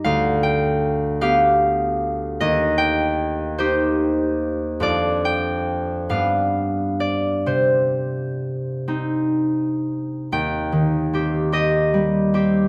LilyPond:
\new Staff \with { instrumentName = "Harp" } { \time 6/8 \key c \minor \tempo 4. = 49 << { <f'' g''>8 g''4 f''4. | ees''8 g''4 c''4. | d''8 g''4 f''4 d''8 | c''2. |
g''4. ees''4. | } \\ { <d, g'>4. <b g'>4. | ees,4. <ees' g'>4. | <f, d' f'>4. <g, b d'>4. | c4. <c' ees'>4. |
ees,8 ees8 <c' g'>8 <c' g'>8 g8 <c' g'>8 | } >> }